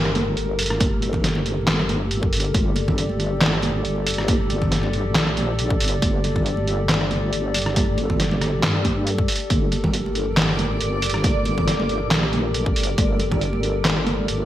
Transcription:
Already playing: G1 G4 A4 A#4
0.05 cross-stick
0.15 closed hi-hat, high conga
0.37 G1, closed hi-hat
0.59 closed hi-hat, open hi-hat
0.66 closed hi-hat
0.70 cross-stick
0.80 kick, closed hi-hat, high conga
1.02 G1, closed hi-hat, muted conga
1.13 kick, low conga
1.24 snare, closed hi-hat
1.35 high conga
1.46 closed hi-hat, muted conga
1.67 G1, snare, clap, closed hi-hat
1.79 cross-stick
1.89 closed hi-hat, high conga
2.11 closed hi-hat
2.23 kick
2.33 closed hi-hat, open hi-hat
2.40 closed hi-hat
2.44 closed hi-hat
2.54 G1 D5, kick, closed hi-hat, high conga
2.76 closed hi-hat, muted conga
2.88 kick, low conga
2.98 closed hi-hat
3.09 high conga
3.20 closed hi-hat
3.41 snare, clap, closed hi-hat
3.53 cross-stick
3.62 closed hi-hat, high conga
3.85 G1, closed hi-hat
4.07 closed hi-hat, open hi-hat
4.18 cross-stick
4.28 kick, closed hi-hat, high conga
4.50 G1, closed hi-hat, muted conga
4.62 kick, low conga
4.72 snare, closed hi-hat
4.83 high conga
4.93 closed hi-hat, muted conga
5.15 A#1, snare, clap, closed hi-hat
5.27 cross-stick
5.37 closed hi-hat, high conga
5.59 closed hi-hat
5.70 kick
5.80 G1, closed hi-hat, open hi-hat
5.88 closed hi-hat
6.02 G1, kick, closed hi-hat, high conga
6.24 closed hi-hat, muted conga
6.36 kick, low conga
6.46 closed hi-hat
6.57 high conga
6.67 closed hi-hat
6.89 snare, clap, closed hi-hat
7.01 cross-stick
7.11 closed hi-hat, high conga
7.33 G1, closed hi-hat
7.54 closed hi-hat, open hi-hat
7.66 cross-stick
7.76 kick, closed hi-hat, high conga
7.98 G1, closed hi-hat, muted conga
8.10 kick, low conga
8.20 snare, closed hi-hat
8.31 high conga
8.41 cross-stick, closed hi-hat, muted conga
8.63 G2, snare, clap, closed hi-hat
8.75 cross-stick
8.85 kick, closed hi-hat, high conga
9.07 closed hi-hat
9.18 kick
9.28 closed hi-hat, open hi-hat
9.36 closed hi-hat
9.40 closed hi-hat
9.50 G1 A#4 D5, kick, closed hi-hat, high conga
9.72 closed hi-hat, muted conga
9.84 kick, low conga
9.93 closed hi-hat
10.06 high conga
10.15 closed hi-hat
10.37 snare, clap, closed hi-hat
10.49 cross-stick
10.59 closed hi-hat, high conga
10.81 G1, closed hi-hat
11.02 closed hi-hat, open hi-hat
11.10 closed hi-hat
11.14 cross-stick
11.24 kick, closed hi-hat, high conga
11.45 G1, closed hi-hat, muted conga
11.58 kick, low conga
11.67 snare, closed hi-hat
11.80 high conga
11.89 closed hi-hat, muted conga
12.11 A#1, snare, clap, closed hi-hat
12.23 cross-stick
12.33 closed hi-hat, high conga
12.54 closed hi-hat
12.66 kick
12.76 G1, open hi-hat
12.80 closed hi-hat
12.83 closed hi-hat
12.98 G1, kick, closed hi-hat, high conga
13.19 closed hi-hat, muted conga
13.31 kick, low conga
13.41 closed hi-hat
13.53 high conga
13.63 closed hi-hat
13.85 snare, clap, closed hi-hat
13.97 cross-stick
14.07 closed hi-hat, high conga
14.28 G1, closed hi-hat

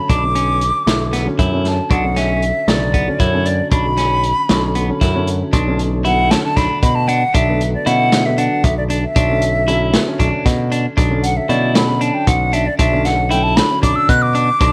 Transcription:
Already playing: D3 F#3 A3 C#4 B5
0.09 B1 D4 D6, kick, closed hi-hat
0.22 D3 F#3 A3 C#4
0.35 C#4, closed hi-hat
0.61 closed hi-hat
0.86 B1 D3 F#3 A3 E4, snare, closed hi-hat
1.13 B3, snare, closed hi-hat
1.25 D3 F#3 A3 C#4
1.39 F#2 E4, kick, closed hi-hat
1.51 D3 F#3 A3 C#4
1.65 A5, snare, closed hi-hat
1.90 B1 D4 F#5, kick, closed hi-hat
2.03 D3 F#3 A3 C#4
2.16 C#4 E5, snare, closed hi-hat
2.42 closed hi-hat
2.67 B1 C#3 D3 F#3 A3 D5, snare, closed hi-hat
2.94 B3, kick, closed hi-hat
3.07 D3 F#3 A3 C#4
3.20 F#2 E4 C#5, kick, closed hi-hat
3.33 D3 F#3 A3 C#4
3.46 D5, closed hi-hat
3.71 B1 D4 B5, kick, closed hi-hat
3.84 D3 F#3 A3 C#4
3.97 C#4, snare, closed hi-hat
4.24 closed hi-hat
4.49 B1 D3 F#3 A3 C#4, snare, closed hi-hat
4.75 B3, closed hi-hat
4.88 D3 F#3 A3 C#4
5.01 F#2 E4, kick, snare, closed hi-hat
5.14 D3 F#3 A3 C#4
5.27 closed hi-hat
5.53 B1 D4, kick, closed hi-hat
5.66 D3 F#3 A3 C#4
5.79 closed hi-hat
6.05 D3 F#3 A3 B3 E4 F#5, closed hi-hat
6.31 D3 F#3 A3 C#4 A5, snare, closed hi-hat
6.44 D3 F#3 A3 D4 A5
6.56 B1 D4 B5, kick, snare, closed hi-hat
6.83 B2 B5, kick, closed hi-hat
6.95 A5
7.08 D4 F#5, closed hi-hat
7.34 B1 D4 E5, kick, closed hi-hat
7.47 D3 F#3 A3 B3
7.61 closed hi-hat
7.74 D5
7.85 B2 D3 F#3 A3 C#4 E4 F#5, closed hi-hat
8.12 D3 F#3 A3 E4, snare, closed hi-hat
8.25 D3 F#3 A3 B3 E5
8.38 D4 F#5, closed hi-hat
8.64 B1 E5, kick, closed hi-hat
8.77 D5
8.90 D4, closed hi-hat
9.03 E5
9.16 B1 D4, kick, closed hi-hat
9.28 D3 F#3 A3 C#4
9.42 closed hi-hat
9.67 D3 F#3 A3 C#4 E4, closed hi-hat
9.93 D3 F#3 A3 B3, snare, closed hi-hat
10.06 D3 F#3 A3 C#4
10.19 B1 D4, kick, closed hi-hat
10.46 B2, kick, snare, closed hi-hat
10.72 D4, closed hi-hat
10.97 B1 D4, kick, closed hi-hat
11.09 D3 F#3 A3 C#4
11.23 F#5, closed hi-hat
11.37 E5
11.48 B2 D3 F#3 A3 C#4 E4 D5, closed hi-hat
11.74 D3 F#3 A3 C#4 B5, snare, closed hi-hat
11.87 D3 F#3 A3 C#4
12.01 D4 A5, closed hi-hat
12.14 G5
12.27 B1 F#5, kick, closed hi-hat
12.53 D4 E5, closed hi-hat
12.66 D5
12.79 B1 D4 E5, kick, closed hi-hat
12.91 D3 F#3 A3 C#4
13.05 F#5, snare, closed hi-hat
13.30 D3 F#3 A3 C#4 E4 G5, closed hi-hat
13.43 A5
13.56 D3 F#3 A3 D4 B5, snare, closed hi-hat
13.69 D3 F#3 A3 C#4
13.83 B1 D4 D6, kick, closed hi-hat
13.96 E6
14.09 B2 F#6, kick, closed hi-hat
14.22 D6
14.35 D4, closed hi-hat
14.61 B1 D4, kick, closed hi-hat

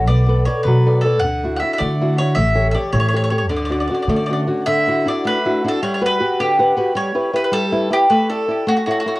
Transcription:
0.07 B1 B3 D5
0.28 A4 B4 D5
0.45 A4 B4 C#5 D5
0.63 B2 F#3 B4
0.86 A4 B4 D5
1.01 A4
1.05 B4 D5
1.19 D2 F#5
1.24 D3
1.43 D4 E4 F#4
1.56 E5 F#5
1.62 D4 E4 F#4
1.73 E5
1.78 D3 A3 D5
2.01 D4 E4 F#4
2.18 D4 E4 F#4 C#5
2.35 A1 A3 E5
2.55 G4 A4 C#5
2.71 G4 D5 E5
2.75 A4 C#5
2.93 A2 E3 C#5
3.00 C#5
3.08 C#5
3.13 G4 A4 C#5
3.24 C#5
3.30 G4 A4 C#5
3.38 C#5
3.49 D2 D3 D5
3.56 D5
3.65 D5
3.69 C#4 D4 F#4 D5
3.80 D5
3.88 C#4 D4 F#4 D5
3.95 D5
4.02 D5
4.08 D3 A3 D5
4.16 D5
4.26 C#4 D4 D5
4.30 F#4 D5
4.47 C#4 D4 F#4
4.66 D3 E5
4.87 D4 E4 F#4
5.06 D4 E4 F#4 D5
5.25 A3 B4
5.45 D4 E4 F#4
5.64 D4 E4 F#4
5.68 A4
5.82 G3 C#5
5.94 C#5
6.01 F#4 G4 B4
6.06 B4
6.20 F#4 G4 B4
6.40 D3 G4
6.59 G4 B4 F#5
6.77 F#4 G4 B4
6.95 G3 C#5
7.15 E4 G4 B4
7.33 E4 G4 B4
7.44 B4
7.52 G3 A4
7.72 E4 G4 B4
7.90 E4 G4 B4
8.10 A3 B4
8.30 E4 A4 D5
8.48 E4 A4 D5
8.67 A3 F#4
8.77 F#4
8.86 E4 F#4 A4 C#5
8.91 F#4
9.00 F#4
9.06 E4 F#4 A4 C#5
9.16 F#4

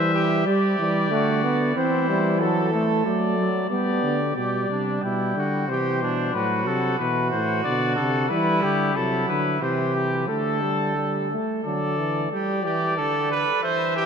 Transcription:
Already playing: E3 G3 C5 E5
0.14 G4
0.46 G3 G4 D5
0.79 E3 G3
1.11 D3 A3 F#4
1.44 B3
1.76 E3 C4 E4 C5
2.09 G3
2.40 F#3 A4
2.73 A3
3.04 F#3 A3 D5
3.38 F#3
3.69 G3 B3 G4 D5
4.03 D3
4.36 B2 G3 G4 D5
4.69 C3 D4
5.03 B2 E4 G5
5.36 D3 F#4
5.68 C3 E3 G4 C5
6.02 B2 D4
6.34 A2 F#3 F#4 B4
6.67 C3 A4
6.99 B2 E3 F#4 B4
7.31 A2 C5
7.64 B2 D3 D5
7.96 C3 A4
8.29 E3 G3 E4 B4
8.62 D3 G4
8.95 C3 F#3 E4 A4
9.28 D3 B4
9.61 C3 E3 G4 C5
9.95 G4
10.28 D3 A3 A4
10.63 G3
10.97 G3
11.31 A3
11.64 D3 F#3 A4 D5
11.98 E3
12.32 G3 G4 D5
12.65 E3 G4
12.97 D3 A4
13.31 B4
13.63 E3 C5 E5
13.96 G4

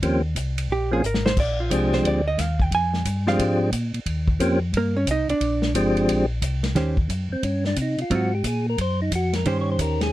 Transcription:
0.02 D#2 F3 A#3 C4 C#4 G4, kick, ride
0.35 C2, kick, hi-hat pedal, ride
0.58 ride
0.69 A#1 G4, kick
0.91 F3 A#3 C4 C#4 F4 G#4
1.03 G#1 A#4, hi-hat pedal
1.14 snare
1.26 C5, snare
1.37 A#1 D5, kick, crash
1.60 F4
1.70 C2 F3 G#3 C4 D4 G4 G#4, kick, hi-hat pedal, ride
1.93 C5, snare
2.04 D2 D5, kick, ride
2.28 D#5
2.38 D#2 F5, kick, snare, hi-hat pedal, ride
2.60 G5, kick
2.71 F2 G#5, kick, ride
2.94 snare
3.05 G2, kick, hi-hat pedal, ride
3.27 F3 G#3 C4 D4 G4 F5, snare
3.39 G#2, kick, ride
3.72 A#2, kick, hi-hat pedal, ride
3.94 A#2, ride
4.06 D#2, kick, ride
4.28 kick
4.39 F2 F3 A#3 C4 C#4 G4, kick, hi-hat pedal, ride
4.73 G2, kick, ride
4.77 A#3 A#4
4.97 C#4 C#5
5.07 C2, kick, hi-hat pedal, ride
5.11 D#4 D#5
5.28 C2 D4 D5, ride
5.41 A#1, kick, ride
5.62 snare
5.74 G1 F3 G#3 C4 D4 G4, kick, hi-hat pedal, ride
5.97 ride
6.08 A#1, kick, ride
6.42 C2, kick, hi-hat pedal, ride
6.63 snare, ride
6.75 D#2 D#3 C#4 G4 C5, kick, snare, ride
6.97 kick
7.09 F#2, kick, hi-hat pedal, ride
7.30 F#2 C4
7.43 G2 C#4, kick, ride
7.64 D4, snare
7.76 C3, kick, hi-hat pedal, ride
7.82 D#4
7.98 C3 F4, ride
8.10 G#2 F#3 C4 F4, kick, ride
8.15 F#4
8.35 G4
8.44 A#2 G#4, kick, hi-hat pedal, ride
8.69 A#4
8.78 F#2 C5, kick, ride
9.02 D#4
9.11 F2 F#4, kick, hi-hat pedal, ride
9.33 A#4, snare, ride
9.45 G2 D#3 C#4 G4 C5, kick, ride
9.61 C#5
9.72 C5
9.78 D#2 A#4, kick, hi-hat pedal, ride
10.01 G#4, snare, ride

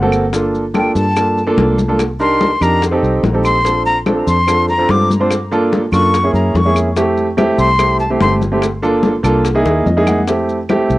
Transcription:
Already playing: G1 F#5
0.02 A#3 C4 F#4 A4
0.12 high bongo, claves, maracas
0.33 A#3 D4 F4 A4, high bongo, high conga, maracas
0.54 high conga, maracas
0.74 A#3 D4 F4 A4 G5, high bongo, high conga, claves, maracas
0.95 G2 A5, high bongo, maracas
1.16 A#3 D4 F4 A4, high bongo, high conga, claves, maracas
1.37 high bongo, high conga, maracas
1.47 A#3 D4 F4 A4
1.57 C2, high bongo, low bongo, high conga, maracas
1.78 high bongo, high conga, maracas
1.88 A#3 D4 F4 A4
1.99 high bongo, high conga, claves, maracas
2.20 D4 D#4 G4 A#4 C6, high bongo, high conga, maracas
2.41 high bongo, high conga, maracas
2.61 F2 D4 D#4 G4 A#4 A#5, high bongo, high conga, claves, maracas
2.82 high bongo, high conga, maracas
2.91 C4 D#4 G4 A4
3.03 C2, high conga, maracas
3.23 A#1, high bongo, low bongo, high conga, maracas
3.33 C4 D#4 G4 A4
3.44 C6, high bongo, claves, maracas
3.65 C4 D4 F4 A4, high bongo, high conga, maracas
3.86 A#5, high conga, maracas
4.06 C4 D4 F4 A4, high bongo, high conga, claves, maracas
4.27 F2 C6, high bongo, maracas
4.47 C4 D4 F4 A4, high bongo, high conga, claves, maracas
4.69 A#5, high bongo, high conga, maracas
4.78 C4 D4 F4 A4
4.89 G2 D6, high bongo, low bongo, high conga, maracas
5.10 high bongo, high conga, maracas
5.20 C4 D4 F4 C5
5.30 high bongo, high conga, claves, maracas
5.51 A#3 D4 F4 A4, high bongo, high conga, maracas
5.73 high bongo, high conga, maracas
5.92 F#2 A#3 D4 F4 A4 C#6, high bongo, high conga, claves, maracas
6.14 high bongo, high conga, maracas
6.24 A#3 C#4 E4 G#4
6.33 F#2 A#5, high conga, maracas
6.54 F2 C#6, high bongo, low bongo, high conga, maracas
6.65 A#3 C#4 E4 G#4
6.76 high bongo, claves, maracas
6.97 A3 C4 E4 G4, high bongo, high conga, maracas
7.17 high conga, maracas
7.37 A3 C4 E4 G4, high bongo, high conga, claves, maracas
7.58 C2 C6, high bongo, maracas
7.79 A3 C4 E4 G4, high bongo, high conga, claves, maracas
8.00 A5, high bongo, high conga, maracas
8.10 A3 C4 E4 G4
8.20 G1 C6, high bongo, low bongo, high conga, maracas
8.41 high bongo, high conga, maracas
8.52 A3 C4 E4 G4
8.62 high bongo, high conga, claves, maracas
8.82 A#3 D4 F4 A4, high bongo, high conga, maracas
9.03 high bongo, high conga, maracas
9.23 C2 A#3 D4 F4 A4, high bongo, high conga, claves, maracas
9.45 high bongo, high conga, maracas
9.55 A#3 D#4 E4 G#4
9.65 D#2, high bongo, high conga, maracas
9.86 F2 D#5, high conga, maracas
9.97 A#3 D#4 E4 G#4
10.07 F#5, low bongo, high conga, claves, maracas
10.28 A3 C4 E4 G4, high bongo, high conga, maracas
10.49 high conga, maracas
10.69 A3 C4 E4 G4, high bongo, high conga, claves, maracas
10.90 C2, high bongo, maracas

